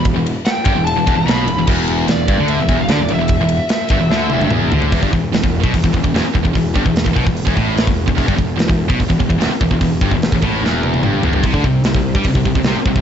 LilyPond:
<<
  \new Staff \with { instrumentName = "Lead electric guitar" } { \time 4/4 \key e \minor \tempo 4 = 147 r4 g''4 a''8. b''4~ b''16 | r4 d''4 e''8. f''16 d''8 e''8~ | e''2. r4 | r1 |
r1 | r1 | r1 | r1 | }
  \new Staff \with { instrumentName = "Distorted electric guitar" } { \clef bass \time 4/4 \key e \minor e,16 e,8 r8. g,16 e,8 e,16 e,16 e,16 b,8 e,16 e,16 | e,4 e,8 g,16 d8 e,16 e,16 e,16 d16 e,16 e,16 e,16~ | e,16 e,8 r8. g,16 e,16 d8 e,16 g,16 e,8 d8 | e,16 g,16 e,8 e,16 e,8 b,16 e,16 e,16 e,16 e,16 e,16 r16 e,16 e,16 |
e,8 g,16 e,8 e,16 b,16 e,8 e,16 a,8. e,8 e,16 | e,16 g,16 e,8 e,16 e,8 b,16 e,16 e,16 e,16 e,16 e,16 r16 e,16 e,16 | e,8 g,16 e,8 e,16 a,8 e,4 g,8 e,16 g,16 | c16 d16 c8 c16 c8 g16 c16 c16 c16 c16 c16 r16 c16 c16 | }
  \new Staff \with { instrumentName = "Distorted electric guitar" } { \clef bass \time 4/4 \key e \minor e,16 e,8 r8. g,16 e,8 e,16 e,16 e,16 b,8 e,16 e,16 | e,4 e,8 g,16 d8 e,16 e,16 e,16 d16 e,16 e,16 e,16~ | e,16 e,8 r8. g,16 e,16 d8 e,16 g,16 e,8 d8 | e,16 g,16 e,8 e,16 e,8 b,16 e,16 e,16 e,16 e,16 e,16 r16 e,16 e,16 |
e,8 g,16 e,8 e,16 b,16 e,8 e,16 a,8. e,8 e,16 | e,16 g,16 e,8 e,16 e,8 b,16 e,16 e,16 e,16 e,16 e,16 r16 e,16 e,16 | e,8 g,16 e,8 e,16 a,8 e,4 g,8 e,16 g,16 | c16 d16 c8 c16 c8 g16 c16 c16 c16 c16 c16 r16 c16 c16 | }
  \new Staff \with { instrumentName = "Picked electric bass" } { \clef bass \time 4/4 \key e \minor e,,16 e,,8 r8. g,,16 e,,8 e,,16 e,,16 e,,16 b,,8 e,,16 e,,16 | e,,4 e,,8 g,,16 d,8 e,,16 e,,16 e,,16 d,16 e,,16 e,,16 e,,16~ | e,,16 e,,8 r8. g,,16 e,,16 d,8 e,,16 g,,16 e,,8 d,8 | e,,16 g,,16 e,,8 e,,16 e,,8 b,,16 e,,16 e,,16 e,,16 e,,16 e,,16 r16 e,,16 e,,16 |
e,,8 g,,16 e,,8 e,,16 b,,16 e,,8 e,,16 a,,8. e,,8 e,,16 | e,,16 g,,16 e,,8 e,,16 e,,8 b,,16 e,,16 e,,16 e,,16 e,,16 e,,16 r16 e,,16 e,,16 | e,,8 g,,16 e,,8 e,,16 a,,8 e,,4 g,,8 e,,16 g,,16 | c,16 d,16 c,8 c,16 c,8 g,16 c,16 c,16 c,16 c,16 c,16 r16 c,16 c,16 | }
  \new DrumStaff \with { instrumentName = "Drums" } \drummode { \time 4/4 <bd cymr>8 cymr8 <cymr sn>8 <bd cymr>8 cymr8 <bd cymr>8 <cymr sn>8 cymr8 | <cymc bd>8 cymr8 <cymr sn>8 <bd cymr>8 cymr8 <bd cymr>8 <cymr sn>8 cymr8 | <bd cymr>8 cymr8 <cymr sn>8 <bd cymr>8 sn8 tommh16 tommh16 toml8 tomfh16 tomfh16 | <hho bd>16 bd16 bd8 <hho sn>16 bd8 bd16 <hho bd>16 bd16 bd16 bd16 <hho sn>8 bd16 bd16 |
<hho bd>8 bd16 bd16 <hho sn>16 bd16 bd16 bd16 hho16 bd16 bd8 <hho sn>16 bd8 bd16 | <hho bd>16 bd16 bd8 <hho sn>16 bd8 bd16 <hho bd>16 bd16 bd16 bd16 <hho sn>8 bd16 bd16 | <hho bd>8 bd16 bd16 <hho sn>16 bd16 bd8 sn8 tommh16 tommh16 toml8 tomfh16 tomfh16 | <hho bd>16 bd16 bd8 <hho sn>16 bd8 bd16 <hho bd>16 bd16 bd16 bd16 <hho sn>8 bd16 bd16 | }
>>